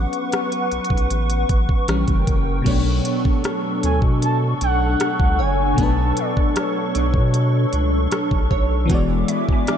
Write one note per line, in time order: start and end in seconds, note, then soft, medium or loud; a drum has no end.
0.00 1.84 F#3 soft
0.00 1.84 B3 soft
0.00 1.85 C#4 medium
0.00 1.84 B4 medium
0.00 1.86 B4 medium
0.00 1.86 F#5 medium
0.00 2.63 C#6 medium
0.13 closed hi-hat soft
0.32 cross-stick loud
0.32 closed hi-hat medium
0.52 closed hi-hat soft
0.72 0.80 B1 soft
0.72 closed hi-hat soft
0.84 closed hi-hat medium
0.90 1.08 B1 medium
0.90 kick medium
0.97 closed hi-hat medium
1.10 1.45 A1 loud
1.10 closed hi-hat medium
1.30 closed hi-hat medium
1.49 1.67 A1 medium
1.49 kick medium
1.49 closed hi-hat medium
1.69 kick medium
1.88 2.06 A#1 loud
1.88 2.62 E3 medium
1.88 2.62 G3 medium
1.88 2.63 C#4 medium
1.88 2.65 A#4 medium
1.88 2.65 G5 medium
1.88 cross-stick loud
1.88 closed hi-hat medium
2.08 2.25 F#1 medium
2.08 kick medium
2.08 closed hi-hat soft
2.27 2.62 F#1 medium
2.27 kick medium
2.27 closed hi-hat medium
2.62 5.72 B2 medium
2.62 5.73 F#3 medium
2.62 5.77 B3 medium
2.62 8.85 A4 medium
2.62 8.85 C#6 medium
2.62 closed hi-hat medium
2.62 crash medium
2.66 3.01 B1 loud
2.66 5.74 A3 medium
2.66 8.86 D4 medium
2.66 5.75 D4 medium
2.66 5.38 C#5 medium
2.66 kick loud
2.71 5.76 C#5 medium
3.05 3.83 D4 medium
3.05 closed hi-hat medium
3.25 kick medium
3.44 4.21 A4 medium
3.44 cross-stick loud
3.44 closed hi-hat medium
3.83 4.01 D2 medium
3.83 4.61 D4 medium
3.83 3.99 G#5 loud
3.83 closed hi-hat medium
4.02 4.54 B2 medium
4.02 kick medium
4.22 4.98 A4 medium
4.22 4.38 A5 loud
4.22 closed hi-hat medium
4.61 4.96 B1 medium
4.61 6.16 D4 medium
4.61 5.42 F#5 loud
4.61 closed hi-hat medium
5.00 6.54 A4 medium
5.00 cross-stick loud
5.00 closed hi-hat medium
5.20 5.41 C#2 medium
5.20 kick medium
5.39 5.74 F#1 medium
5.39 5.78 C#5 medium
5.39 5.82 G#5 loud
5.74 8.84 B2 medium
5.74 8.85 F#3 medium
5.74 9.28 B3 medium
5.74 closed hi-hat medium
5.78 6.13 B1 loud
5.78 8.86 A3 medium
5.78 8.87 D4 medium
5.78 6.20 A5 loud
5.78 kick loud
5.83 8.88 B4 medium
6.17 6.94 D4 medium
6.17 6.59 D5 medium
6.17 closed hi-hat medium
6.37 kick medium
6.56 7.32 A4 medium
6.56 8.51 C#5 medium
6.56 cross-stick loud
6.56 closed hi-hat medium
6.95 7.15 B1 medium
6.95 7.72 D4 medium
6.95 closed hi-hat medium
7.14 7.66 B2 loud
7.14 kick loud
7.34 8.11 A4 medium
7.34 closed hi-hat medium
7.73 8.08 C#2 medium
7.73 9.67 D4 medium
7.73 closed hi-hat medium
8.12 8.90 A4 medium
8.12 cross-stick loud
8.12 closed hi-hat medium
8.31 8.49 B1 medium
8.31 kick medium
8.51 8.91 B1 medium
8.51 8.97 C#5 medium
8.51 kick medium
8.86 9.78 E3 medium
8.86 9.78 G#3 medium
8.86 9.78 B3 medium
8.86 9.78 E5 medium
8.86 9.78 D6 medium
8.90 9.24 E1 loud
8.90 9.78 E3 medium
8.90 9.78 G#3 medium
8.90 9.78 F#4 medium
8.90 kick loud
8.90 closed hi-hat medium
8.95 9.78 D5 medium
9.28 9.78 B3 medium
9.28 9.78 E5 medium
9.28 closed hi-hat medium
9.49 9.78 G#5 medium
9.49 kick medium
9.67 9.78 D4 medium
9.67 cross-stick loud
9.67 closed hi-hat medium